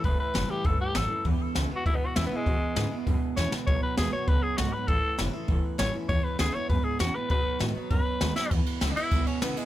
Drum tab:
RD |--------|--------|--------|--------|
HH |o-o-o-o-|o---o-o-|o-o-o---|o-o-o-o-|
SD |--o---o-|--o---o-|--o---oo|--o---o-|
BD |o---o---|o---o---|o---o---|o---o---|

RD |--------|--------|--------|xxxxxxxx|
HH |o-o-o-o-|o---o---|o-o-o-o-|--------|
SD |--o---o-|--o---o-|--o---oo|--o---o-|
BD |o---o---|o---o---|o---o---|o---o---|